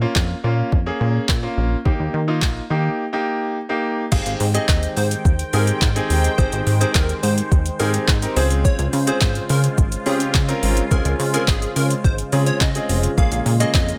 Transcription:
0.01 grand piano A#3 C#4 F4
0.16 analog synth bass F2, kick, snare, clap
0.44 analog synth bass A#2, grand piano A#3 C#4 F4
0.72 analog synth bass F2, kick
0.86 grand piano A#3 C#4 G#4
1.01 analog synth bass A#2
1.29 analog synth bass A#2, kick, snare, clap
1.43 grand piano A#3 C#4 F4
1.57 analog synth bass A#1
1.85 analog synth bass D#2, grand piano A#3 D#4 G4, kick
2.00 analog synth bass D#2
2.14 analog synth bass D#3
2.28 grand piano A#3 D#4 F4
2.42 analog synth bass A#1, kick, snare, clap
2.70 analog synth bass D#3, grand piano A#3 D#4 G4
3.13 grand piano A#3 D#4 G4
3.69 grand piano A#3 D#4 G4
4.12 analog synth bass G#1, analog synth pad D#3 G#3 C5 G5, grand piano C4 D#4 G4 G#4, digital synth lead F5, kick, crash, shaker
4.26 analog synth bass G#1, closed hi-hat, shaker
4.40 analog synth bass G#2, open hi-hat, shaker
4.54 grand piano C4 D#4 G4 G#4, digital synth lead D#5, closed hi-hat, shaker
4.68 analog synth bass D#2, digital synth lead D#5, kick, snare, clap, shaker
4.83 closed hi-hat, shaker
4.96 analog synth bass G#2, digital synth lead C5, open hi-hat, shaker
5.11 closed hi-hat, shaker
5.25 analog synth bass D#2, kick, shaker
5.39 closed hi-hat, shaker
5.53 analog synth bass G#2, grand piano C4 D#4 G4 G#4, digital synth lead A#4, open hi-hat, shaker
5.67 closed hi-hat, shaker
5.82 analog synth bass G#2, kick, snare, clap, shaker
5.96 grand piano C4 D#4 G4 G#4, closed hi-hat, shaker
6.10 analog synth bass D#2, open hi-hat, shaker
6.24 closed hi-hat, shaker
6.38 analog synth bass G#1, grand piano C4 D#4 G4 G#4, digital synth lead C5, kick, shaker
6.52 analog synth bass G#1, closed hi-hat, shaker
6.67 analog synth bass G#2, open hi-hat, shaker
6.81 grand piano C4 D#4 G4 G#4, digital synth lead C5, closed hi-hat, shaker
6.95 analog synth bass D#2, digital synth lead A#4, kick, snare, clap, shaker
7.09 closed hi-hat, shaker
7.23 analog synth bass G#2, digital synth lead C5, open hi-hat, shaker
7.38 closed hi-hat, shaker
7.52 analog synth bass D#2, kick, shaker
7.66 closed hi-hat, shaker
7.79 analog synth bass G#2, grand piano C4 D#4 G4 G#4, digital synth lead A#4, open hi-hat, shaker
7.94 closed hi-hat, shaker
8.08 analog synth bass G#2, kick, snare, clap, shaker
8.22 grand piano C4 D#4 G4 A#4, closed hi-hat, shaker
8.36 analog synth bass C#2, analog synth pad C#3 F4, grand piano C4 C#4 F4 G#4, digital synth lead C5, open hi-hat, shaker
8.50 closed hi-hat, shaker
8.65 digital synth lead C#5, kick, shaker
8.79 analog synth bass C#2, closed hi-hat, shaker
8.93 analog synth bass C#3, open hi-hat, shaker
9.07 grand piano C4 C#4 F4 G#4, digital synth lead C5, closed hi-hat, shaker
9.21 analog synth bass G#1, digital synth lead C5, kick, snare, clap, shaker
9.35 closed hi-hat, shaker
9.49 analog synth bass C#3, digital synth lead A#4, open hi-hat, shaker
9.64 closed hi-hat, shaker
9.78 analog synth bass G#1, kick, shaker
9.92 closed hi-hat, shaker
10.06 analog synth bass C#3, grand piano C4 C#4 F4 G4, digital synth lead G#4, open hi-hat, shaker
10.20 closed hi-hat, shaker
10.34 analog synth bass C#3, kick, snare, clap, shaker
10.48 grand piano C4 C#4 F4 A#4, closed hi-hat, shaker
10.63 analog synth bass G#1, open hi-hat, shaker
10.77 closed hi-hat, shaker
10.91 analog synth bass C#2, grand piano C4 C#4 F4 G#4, digital synth lead A#4, kick, shaker
11.05 analog synth bass C#2, closed hi-hat, shaker
11.19 analog synth bass C#3, open hi-hat, shaker
11.33 grand piano C4 C#4 F4 G#4, digital synth lead A#4, closed hi-hat, shaker
11.48 analog synth bass G#1, digital synth lead G#4, kick, snare, clap, shaker
11.62 closed hi-hat, shaker
11.76 analog synth bass C#3, digital synth lead A#4, open hi-hat, shaker
11.90 closed hi-hat, shaker
12.04 analog synth bass G#1, digital synth lead C5, kick, shaker
12.18 closed hi-hat, shaker
12.32 analog synth bass C#3, grand piano C4 C#4 F4 G#4, open hi-hat, shaker
12.46 digital synth lead C#5, closed hi-hat, shaker
12.61 analog synth bass C#3, digital synth lead D#5, kick, snare, clap, shaker
12.75 grand piano C4 C#4 F4 G#4, closed hi-hat, shaker
12.89 analog synth bass F1, open hi-hat, shaker
13.03 closed hi-hat, shaker
13.18 analog synth bass A#1, grand piano A#3 C#4 F4 G#4, analog synth pad A#3, digital synth lead F5, kick, shaker
13.32 analog synth bass A#1, closed hi-hat, shaker
13.46 analog synth bass A#2, open hi-hat, shaker
13.60 grand piano A#3 C#4 F4 G#4, digital synth lead D#5, closed hi-hat, shaker
13.74 analog synth bass F2, digital synth lead D#5, kick, snare, clap, shaker
13.89 closed hi-hat, shaker

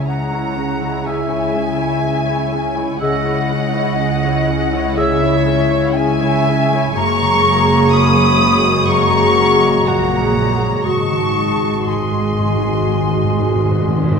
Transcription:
Already playing: double bass section C#2, harp C#3 G#3 C#4 E4, cello section C#3, french horn section G#3 E4
0.07 viola section C#4 G#4, harp G#4, flute section F#5, violin section A#5
0.31 harp G#3, viola section E4 C#5
0.56 viola section C#4 G#4, harp C#4
0.80 harp G#3, viola section E4 C#5
1.05 harp C#3, viola section C#4 G#4, clarinet G#4, flute section E5, oboe E5, violin section G#5
1.29 harp C#4, viola section E4 C#5
1.54 harp G#3, viola section C#4 G#4
1.78 viola section E4 C#5, harp E4
2.04 viola section C#4 G#4, harp G#4
2.27 harp G#3, viola section E4 C#5
2.53 harp C#4, viola section C#4 G#4
2.77 harp G#3, viola section E4 C#5
3.00 double bass section C#2, harp C#3, cello section C#3, french horn section G#3 E4, viola section C#4 G#4, clarinet G#4, flute section D#5, oboe E5, violin section F#5
3.25 harp C#4, viola section E4 C#5
3.51 harp G#3, viola section C#4 G#4
3.74 viola section E4 C#5, harp E4
3.99 viola section C#4 G#4
4.24 harp G#3, viola section E4 C#5
4.48 viola section C#4 G#4, harp C#4
4.73 harp G#3, viola section E4 C#5
4.97 harp C#3, viola section C#4 G#4, clarinet G#4, flute section C#5, violin section E5, oboe E5
5.22 harp C#4, viola section E4 C#5
5.46 harp G#3, viola section C#4 G#4
5.71 harp E4, viola section E4 C#5
5.95 viola section C#4 G#4, flute section E5, violin section G#5
6.21 harp G#3, viola section E4 C#5
6.46 harp C#4, viola section C#4 G#4
6.71 harp G#3, viola section E4 C#5
6.95 double bass section F#1, harp F#2, cello section F#2, french horn section G#3 F#4, viola section A#3 G#4, clarinet G#4, oboe C#5, flute section A#5, violin section C#6
7.20 harp C#3
7.44 harp A#3
7.68 harp F#4
7.93 flute section B5, violin section D#6
8.16 harp A#3
8.40 harp C#3
8.64 harp A#3
8.87 harp F#2, viola section A#3 G#4, clarinet G#4, oboe C#5, flute section A#5, violin section C#6
9.12 harp C#3
9.36 harp A#3
9.61 harp F#4
9.85 double bass section A#1, cello section A#2, viola section A#3 G#4, clarinet G#4, harp A#4, oboe C#5, flute section F#5, violin section A#5
10.10 harp A#3
10.35 harp C#3
10.60 harp A#3
10.85 double bass section G#1, harp G#2, timpani G#2, cello section G#2, french horn section G#3 F#4, viola section G#3 F#4, clarinet F#4, oboe D#5, flute section A5, violin section C#6
10.94 timpani G#2
11.02 timpani G#2
11.09 timpani G#2, harp D#3
11.17 timpani G#2
11.25 timpani G#2
11.33 timpani G#2
11.37 harp G#3
11.41 timpani G#2
11.48 timpani G#2
11.56 timpani G#2
11.62 timpani G#2, harp F#4
11.71 timpani G#2
11.79 timpani G#2
11.86 timpani G#2, viola section G#3 F#4, clarinet F#4, harp G#4, oboe D#5, flute section G#5, violin section C6
11.94 timpani G#2
12.02 timpani G#2
12.10 timpani G#2
12.14 timpani G#2, harp G#3
12.25 timpani G#2
12.33 timpani G#2
12.39 timpani G#2, harp D#3
12.48 timpani G#2
12.55 timpani G#2
12.63 timpani G#2, harp G#3
12.71 timpani G#2
12.78 timpani G#2
12.87 timpani G#2, harp G#2
12.94 timpani G#2
13.01 timpani G#2
13.09 timpani G#2
13.15 timpani G#2, harp D#3
13.24 timpani G#2
13.32 timpani G#2
13.39 timpani G#2, harp G#3
13.48 timpani G#2
13.56 timpani G#2
13.64 timpani G#2, harp F#4
13.71 timpani G#2
13.80 timpani G#2
13.88 timpani G#2, harp G#4
13.95 timpani G#2
14.04 timpani G#2
14.11 timpani G#2
14.16 harp G#3

